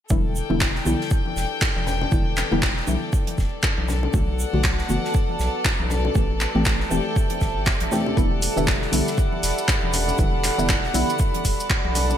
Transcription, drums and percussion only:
0.10 kick, high conga, shaker
0.36 shaker
0.50 high conga
0.61 kick, snare, clap, shaker
0.75 snare
0.86 high conga, shaker
1.01 snare
1.11 kick, shaker
1.26 high conga
1.36 snare, shaker
1.62 kick, snare, clap, shaker
1.76 high conga
1.87 snare, low conga, shaker
2.02 low conga
2.12 kick, high conga, shaker
2.37 clap, shaker
2.52 high conga
2.62 kick, snare, clap, shaker
2.77 snare
2.87 high conga, shaker
3.13 kick, shaker
3.27 closed hi-hat, high conga
3.38 kick, snare, shaker
3.63 kick, clap, shaker
3.78 high conga
3.88 snare, low conga, shaker
4.03 low conga
4.14 kick, high conga, shaker
4.39 shaker
4.54 high conga
4.63 kick, snare, clap, shaker
4.78 snare
4.89 high conga, shaker
5.05 snare
5.14 kick, shaker
5.29 high conga
5.39 snare, shaker
5.65 kick, snare, clap, shaker
5.80 high conga
5.90 snare, low conga, shaker
6.05 low conga
6.15 kick, high conga, shaker
6.40 clap, shaker
6.55 high conga
6.66 kick, snare, clap, shaker
6.80 snare
6.91 high conga, shaker
7.16 kick, shaker
7.30 closed hi-hat, high conga
7.41 kick, snare, shaker
7.66 kick, snare, clap, shaker
7.80 closed hi-hat, high conga
7.91 snare, low conga, shaker
8.06 low conga
8.17 kick, high conga, shaker
8.42 open hi-hat, shaker
8.57 high conga, shaker
8.68 kick, snare, clap, shaker
8.82 snare
8.93 open hi-hat, high conga, shaker
9.07 snare, shaker
9.18 kick, shaker
9.33 high conga
9.43 snare, open hi-hat, shaker
9.58 shaker
9.68 kick, snare, clap, shaker
9.83 high conga
9.93 snare, open hi-hat, low conga, shaker
10.08 low conga, shaker
10.18 kick, high conga, shaker
10.44 clap, open hi-hat, shaker
10.59 high conga, shaker
10.69 kick, snare, clap, shaker
10.83 snare
10.94 open hi-hat, high conga, shaker
11.10 shaker
11.19 kick, shaker
11.34 closed hi-hat, high conga
11.45 kick, snare, open hi-hat, shaker
11.60 shaker
11.70 kick, clap, shaker
11.85 high conga
11.95 snare, open hi-hat, low conga, shaker
12.10 low conga, shaker

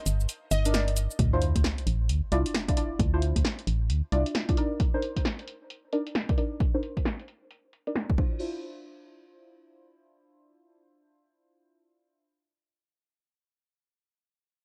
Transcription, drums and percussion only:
0.06 open hi-hat, shaker
0.20 shaker
0.29 closed hi-hat, shaker
0.51 open hi-hat, shaker
0.65 closed hi-hat, shaker
0.74 snare, shaker
0.88 closed hi-hat
0.97 open hi-hat, shaker
1.11 shaker
1.19 kick, closed hi-hat
1.42 open hi-hat
1.56 kick, closed hi-hat
1.64 snare
1.78 closed hi-hat
1.87 open hi-hat
2.09 closed hi-hat
2.32 open hi-hat
2.46 closed hi-hat
2.54 snare
2.68 kick, closed hi-hat
2.77 open hi-hat
2.99 kick, closed hi-hat
3.22 open hi-hat
3.36 kick, closed hi-hat
3.45 snare
3.59 closed hi-hat
3.67 open hi-hat
3.90 closed hi-hat
4.12 open hi-hat
4.26 closed hi-hat
4.35 snare
4.49 kick, closed hi-hat
4.57 open hi-hat
4.80 kick, closed hi-hat
5.02 open hi-hat
5.16 kick, closed hi-hat
5.25 snare
5.39 closed hi-hat
5.48 open hi-hat
5.70 closed hi-hat
5.93 open hi-hat
6.07 closed hi-hat
6.15 snare
6.29 kick, closed hi-hat
6.38 open hi-hat
6.60 kick, closed hi-hat
6.83 open hi-hat
6.97 kick, closed hi-hat
7.05 snare
7.20 closed hi-hat
7.28 open hi-hat
7.51 closed hi-hat
7.73 open hi-hat
7.87 closed hi-hat
7.96 snare
8.10 kick, closed hi-hat
8.18 kick, crash

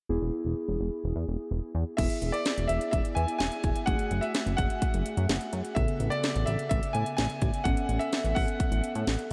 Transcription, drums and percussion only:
1.98 kick, closed hi-hat, crash
2.10 closed hi-hat
2.22 closed hi-hat
2.34 closed hi-hat
2.46 snare, closed hi-hat
2.58 closed hi-hat
2.69 closed hi-hat
2.81 closed hi-hat
2.93 kick, closed hi-hat
3.05 closed hi-hat
3.17 closed hi-hat
3.28 closed hi-hat
3.40 snare, closed hi-hat
3.52 closed hi-hat
3.64 kick, closed hi-hat
3.76 closed hi-hat
3.87 kick, closed hi-hat
3.99 closed hi-hat
4.11 closed hi-hat
4.23 closed hi-hat
4.34 snare, closed hi-hat
4.47 closed hi-hat
4.58 kick, closed hi-hat
4.70 closed hi-hat
4.82 kick, closed hi-hat
4.94 closed hi-hat
5.06 closed hi-hat
5.17 closed hi-hat
5.29 snare, closed hi-hat
5.41 closed hi-hat
5.53 closed hi-hat
5.65 closed hi-hat
5.76 kick, closed hi-hat
5.88 closed hi-hat
6.00 closed hi-hat
6.12 closed hi-hat
6.24 snare, closed hi-hat
6.36 closed hi-hat
6.47 closed hi-hat
6.59 closed hi-hat
6.71 kick, closed hi-hat
6.83 closed hi-hat
6.95 closed hi-hat
7.06 closed hi-hat
7.18 snare, closed hi-hat
7.30 closed hi-hat
7.42 kick, closed hi-hat
7.54 closed hi-hat
7.65 kick, closed hi-hat
7.77 closed hi-hat
7.89 closed hi-hat
8.01 closed hi-hat
8.13 snare, closed hi-hat
8.25 closed hi-hat
8.36 kick, open hi-hat
8.48 closed hi-hat
8.60 kick, closed hi-hat
8.72 closed hi-hat
8.84 closed hi-hat
8.95 closed hi-hat
9.07 snare, closed hi-hat
9.19 closed hi-hat

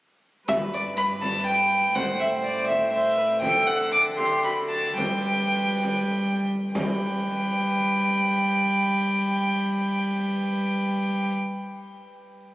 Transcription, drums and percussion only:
0.48 frame drum
1.22 frame drum
1.95 frame drum
2.69 frame drum
3.42 frame drum
4.18 frame drum
4.98 frame drum
5.83 frame drum
6.75 frame drum

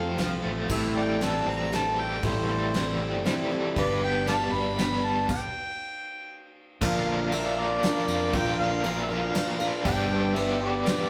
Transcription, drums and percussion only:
0.18 snare, ride
0.69 kick, crash
1.21 snare, ride
1.72 snare, ride
2.23 kick, ride
2.74 snare, ride
3.25 snare, ride
3.76 kick, ride
4.27 snare, ride
4.78 snare, ride
5.29 kick, crash
6.81 kick, crash
7.32 ride
7.83 snare, ride
8.08 ride
8.33 kick, ride
8.84 ride
9.35 snare, ride
9.60 ride
9.85 kick, crash
10.36 ride
10.86 snare, ride

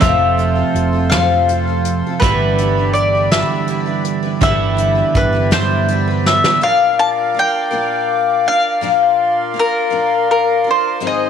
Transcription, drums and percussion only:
0.02 kick, closed hi-hat
0.39 closed hi-hat
0.75 closed hi-hat
1.11 snare, closed hi-hat
1.49 closed hi-hat
1.85 closed hi-hat
2.22 kick, closed hi-hat
2.58 closed hi-hat
2.95 closed hi-hat
3.31 snare, closed hi-hat
3.67 closed hi-hat
4.04 closed hi-hat
4.41 kick, closed hi-hat
4.78 closed hi-hat
5.15 kick, closed hi-hat
5.51 snare, closed hi-hat
5.88 closed hi-hat
6.26 snare
6.44 snare

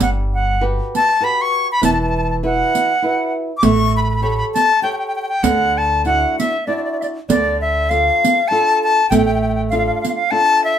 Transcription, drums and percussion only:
0.00 riq
0.95 riq
1.83 riq
2.75 riq
3.63 riq
4.56 riq
5.44 riq
6.05 riq
6.40 riq
7.02 riq
7.30 riq
7.91 riq
8.25 riq
9.12 riq
9.72 riq
10.05 riq

